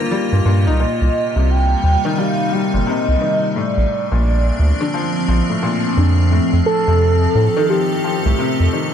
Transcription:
Already playing: felt piano A#2 D3 D#3 G3, ambient pad A#3 F4 G4
0.00 felt piano A#3
0.11 felt piano G3
0.32 analog synth bass G2, felt piano A#2
0.46 analog synth bass G2, felt piano A#2
0.67 analog synth bass C2, felt piano D#4
0.80 felt piano A#2, ambient pad C3, soft synth lead D#5
1.01 analog synth bass C2
1.18 ambient pad G3
1.36 analog synth bass C2, felt piano C3
1.49 soft synth lead G5
1.55 ambient pad D#4
1.83 analog synth bass D#2
2.05 felt piano D#3
2.18 felt piano G3, soft synth lead F5
2.52 felt piano G3, soft synth lead G5
2.74 analog synth bass G1, felt piano A#2
2.87 felt piano C3, soft synth lead D#5
3.08 analog synth bass C2
3.21 felt piano D#3
3.56 felt piano A2, soft synth lead D5
3.73 analog synth bass A#1, ambient pad D4
3.90 ambient pad F3
3.94 ambient pad C4
4.12 analog synth bass A#1, felt piano A#2
4.59 analog synth bass D2
4.81 felt piano D3
4.94 felt piano F3
5.28 analog synth bass A#1, felt piano F3
5.50 felt piano A2
5.63 felt piano A#2
5.97 analog synth bass F2, felt piano D3
6.32 felt piano A2
6.53 analog synth bass F2
6.66 soft synth lead A4
6.88 analog synth bass F2, felt piano C3
6.92 ambient pad G4 A4
7.35 analog synth bass A2
7.57 felt piano D#3
7.70 felt piano F3, soft synth lead G4
8.04 felt piano F3
8.26 analog synth bass C2, felt piano A2
8.39 felt piano C3
8.60 analog synth bass F2
8.73 felt piano D#3

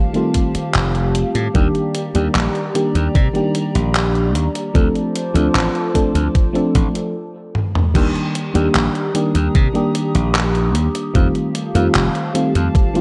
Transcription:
Already playing: fm electric piano C4 F4, ambient pad G4 F5 A5
0.13 fm electric piano D#3 G3 A3 C4 F4, closed hi-hat
0.34 kick, closed hi-hat
0.55 muted slap bass stroke, closed hi-hat
0.75 slap bass F1, clap, closed hi-hat
0.95 closed hi-hat
1.15 closed hi-hat
1.35 slap bass A2, closed hi-hat
1.54 slap bass D#2, fm electric piano D#3 G3 A#3 D4 G4, ambient pad D5 A#5, kick, closed hi-hat
1.75 closed hi-hat
1.95 closed hi-hat
2.14 slap bass D#2, fm electric piano D#3 G3 A#3 D4 G4, closed hi-hat
2.35 slap bass A#1, clap, closed hi-hat
2.55 closed hi-hat
2.74 fm electric piano D#3 G3 A#3 D4 G4, closed hi-hat
2.95 slap bass D#2, closed hi-hat
3.15 slap bass C3, kick, closed hi-hat
3.33 fm electric piano D#3 G3 A#3 D4 G4, closed hi-hat
3.55 closed hi-hat
3.75 slap bass A#1, closed hi-hat
3.95 clap, closed hi-hat
4.15 closed hi-hat
4.35 slap bass D#2, closed hi-hat
4.55 closed hi-hat
4.74 slap bass D2, fm electric piano F3 A3 C4 D4 A4, ambient pad F4 C5 A5 D6, kick, closed hi-hat
4.95 closed hi-hat
5.16 closed hi-hat
5.34 slap bass D2, fm electric piano F3 A3 C4 D4 A4, closed hi-hat
5.55 slap bass A1, clap, closed hi-hat
5.75 closed hi-hat
5.94 fm electric piano F3 A3 C4 D4 A4, kick, closed hi-hat
6.15 slap bass D2, closed hi-hat
6.35 kick, closed hi-hat
6.53 fm electric piano F3 A3 C4 D4 A4, closed hi-hat
6.75 slap bass A1, kick, closed hi-hat
6.95 closed hi-hat
7.55 high tom
7.75 mid tom
7.94 slap bass D#2, fm electric piano D#3 G3 A#3 D4 G4, ambient pad D4 G4 A#5 D#6, kick, closed hi-hat, crash
8.15 closed hi-hat
8.35 closed hi-hat
8.54 slap bass D#2, fm electric piano D#3 G3 A#3 D4 G4, closed hi-hat
8.75 slap bass A#1, clap, closed hi-hat
8.95 closed hi-hat
9.14 fm electric piano D#3 G3 A#3 D4 G4, closed hi-hat
9.35 slap bass D#2, closed hi-hat
9.55 slap bass C3, kick, closed hi-hat
9.73 fm electric piano D#3 G3 A#3 D4 G4, closed hi-hat
9.95 closed hi-hat
10.15 slap bass A#1, closed hi-hat
10.35 clap, closed hi-hat
10.55 closed hi-hat
10.75 slap bass D#2, closed hi-hat
10.95 closed hi-hat
11.14 slap bass F2, fm electric piano D#3 G3 A3 C4 F4, ambient pad F5 A5, kick, closed hi-hat
11.35 closed hi-hat
11.55 closed hi-hat
11.74 slap bass F2, fm electric piano D#3 G3 A3 C4 F4, closed hi-hat
11.95 slap bass F1, clap, closed hi-hat
12.15 closed hi-hat
12.34 fm electric piano D#3 G3 A3 C4 F4, closed hi-hat
12.55 slap bass F2, closed hi-hat
12.75 kick, closed hi-hat
12.94 fm electric piano D#3 G3 A3 C4 F4, closed hi-hat

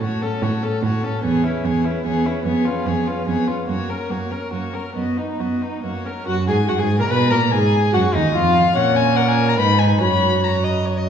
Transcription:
0.01 cello A2, viola A3, violin F#4 C#5
0.22 viola C#4, violin A4
0.43 cello A2, viola A3, violin F#4 C#5
0.62 viola C#4, violin A4
0.83 cello A2, viola A3, violin F#4 C#5
1.03 viola C#4, violin A4
1.24 cello E2, viola B3, violin G#4 C#5
1.44 viola C#4, violin E4 B4
1.64 cello E2, viola B3, violin G#4 C#5
1.85 viola C#4, violin E4 B4
2.05 cello E2, viola B3, violin G#4 C#5
2.25 viola C#4, violin E4 B4
2.45 cello F2, viola B3, violin G#4 C#5
2.65 viola C#4, violin F4 B4
2.86 cello F2, viola B3, violin G#4 C#5
3.07 viola C#4, violin F4 B4
3.27 cello F2, viola B3, violin G#4 C#5
3.48 viola C#4, violin F4 B4
3.68 cello F#2, viola A#3, violin F#4 C#5
3.89 viola C#4, violin A#4
4.09 cello F#2, viola A#3, violin F#4 C#5
4.31 viola C#4, violin A#4
4.52 cello F#2, viola A#3, violin F#4 C#5
4.74 viola C#4, violin A#4
4.95 cello F#2, viola B3, violin F#4 D#5
5.18 viola D#4, violin D#4 B4
5.40 cello F#2, viola B3, violin F#4 D#5
5.61 viola D#4, violin D#4 B4
5.83 cello F#2, viola A#3, violin F#4 C#5
6.05 viola C#4, violin A#4
6.27 cello F#2, viola F#4, violin F#4 F#5
6.48 cello G#2, viola G#4, violin G#4 G#5
6.68 cello F#2, viola F#4, violin F#4 F#5
6.79 cello G#2, viola G#4, violin G#4 G#5
6.99 cello A#2, viola A#4, violin A#4 A#5
7.09 cello B2, viola B4, violin B4 B5
7.30 cello A#2, viola A#4, violin A#4 A#5
7.51 cello G#2, viola G#4, violin G#4 G#5
7.93 cello F#2, viola F#4, violin F#4 F#5
8.14 cello D#2, viola D#4, violin D#4 D#5
8.35 cello F2, viola F4, violin F4 F5
8.76 cello A#2, viola C#4, violin C#5 F#5
8.96 violin G#5
9.16 violin A#4 F#5
9.28 violin G#5
9.49 violin A#5
9.58 cello G#2, viola D#4, violin B4 B5
9.79 violin G#5
10.01 cello F#2, viola F#4, violin C#5 B5
10.43 violin C#5 A#5
10.64 violin D#5
10.86 violin C#5
10.98 violin D#5

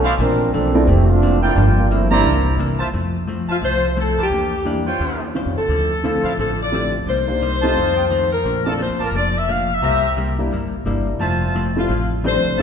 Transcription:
Already playing: upright bass B1
0.04 trumpet section E4 C5 D5 F5
0.18 upright bass A#1, hollow-body jazz guitar A#2 E3 A3 D4, trombone section F3 C4 D4 A#4
0.53 upright bass B1, hollow-body jazz guitar A#2 E3 A3 D4, trombone section F3 C4 D4 A4
0.74 upright piano F3 A3 C4 D4 E4
0.87 upright bass F1, hollow-body jazz guitar A#2 E3 A3 D4, trombone section E3 A3 C4 G4
1.09 trombone section A3 C4 D4 F4
1.22 hollow-body jazz guitar A#2 E3 A3 D4
1.42 trombone section A3 C4 D4 E4, trumpet section F4 A#4 D5 G5
1.55 upright bass G1, hollow-body jazz guitar G2 F3 A#3 D4, trombone section F3 G3 A#3 D4
1.77 trombone section G3 A#3 D4 F4
1.90 hollow-body jazz guitar G2 F3 A#3 D4, trombone section F3 A3 C4 E4
2.10 upright piano G3 A#3 C4 D4 E4, trombone section G3 A#3 D4 E4, trumpet section E4 C5 D5 A#5
2.24 upright bass C2, hollow-body jazz guitar C3 E3 A#3 D4
2.58 upright bass C3, hollow-body jazz guitar C3 E3 A#3 D4
2.79 trumpet section F4 C5 E5 A5
2.93 upright bass F2, hollow-body jazz guitar F3 A3 C4 E4
3.28 hollow-body jazz guitar F3 A3 C4 E4
3.48 trumpet section F4 C5 E5 A5, saxophone section F4, muted upright bass stroke
3.61 upright bass C2, hollow-body jazz guitar F3 A3 C4 E4, saxophone section C5
3.97 hollow-body jazz guitar F3 A3 C4 E4, saxophone section A4
4.17 upright bass F2, trumpet section E4 A#4 D5 A5
4.23 saxophone section G4
4.30 upright bass E2, hollow-body jazz guitar E3 A#3 D4 G4
4.65 hollow-body jazz guitar E3 A#3 D4 G4, upright piano G3 A#3 D4 E4
4.86 trumpet section F4 C5 C#5 G5
5.00 upright bass D#2, hollow-body jazz guitar D#3 C#4 G4 C5
5.34 hollow-body jazz guitar D#3 C#4 G4 C5, upright piano G3 C4 C#4 F4
5.46 upright bass F2
5.58 upright bass C#2, saxophone section A4
5.68 upright bass D2, hollow-body jazz guitar D3 F3 C4 E4
6.03 hollow-body jazz guitar D3 F3 C4 E4, upright piano A3 C4 E4 F4
6.23 upright bass A2, trumpet section E4 C5 D5 F5
6.37 upright bass A1, hollow-body jazz guitar D3 F3 C4 E4, saxophone section A4
6.63 saxophone section D5
6.72 hollow-body jazz guitar D3 F3 C4 E4, upright piano A3 C4 E4 G4
7.06 upright bass C2, hollow-body jazz guitar C3 G3 A#3 D#4, saxophone section C5
7.28 upright piano A#3 D4 D#4 G4
7.41 hollow-body jazz guitar C3 G3 A#3 D#4
7.61 upright piano A3 C4 D#4 G4, trumpet section F4 C5 D#5 A5
7.75 upright bass F2, hollow-body jazz guitar F2 D#3 A3 C4
7.96 trumpet section F4 C5 D#5 G5
8.10 hollow-body jazz guitar F2 D#3 A3 C4
8.33 saxophone section A#4
8.43 upright bass A#1, hollow-body jazz guitar A#2 F3 A3 D4
8.65 upright piano A3 C4 D4 F4, trumpet section F4 A#4 D5 A5
8.69 saxophone section A4
8.79 hollow-body jazz guitar A#2 F3 A3 D4, saxophone section C5
8.89 upright bass D2
8.99 upright bass A1, trumpet section F4 A#4 D5 A5
9.04 saxophone section A#4
9.11 upright bass F1, hollow-body jazz guitar A#2 F3
9.15 hollow-body jazz guitar A3 D4, saxophone section D5
9.38 saxophone section E5
9.48 hollow-body jazz guitar A#2 F3 A3 D4, saxophone section F5
9.74 saxophone section E5
9.81 upright bass C2, hollow-body jazz guitar C3 G3 A#3 E4, trumpet section G4 C5 E5 A#5
10.17 hollow-body jazz guitar C3 G3 A#3 E4
10.39 upright piano G3 A#3 D4 E4
10.51 upright bass G1, hollow-body jazz guitar C3 G3 A#3 E4
10.85 upright bass G1, hollow-body jazz guitar C3 G3 A#3 E4, upright piano G3 A#3 D4 E4
11.19 upright bass F1, hollow-body jazz guitar F3 A3 C4 E4, trumpet section F4 C5 E5 A5
11.55 hollow-body jazz guitar F3 A3 C4 E4
11.76 upright piano G3 A3 C4 E4, saxophone section F4
11.89 upright bass A1, hollow-body jazz guitar F3 A3 C4 E4
12.24 hollow-body jazz guitar F3 A3 C4 E4, upright piano G3 A3 C4 D4, saxophone section C5
12.44 upright bass C2
12.57 upright bass F1, hollow-body jazz guitar F3 A3, upright piano G3 A3, trumpet section F4 C5 E5 A5

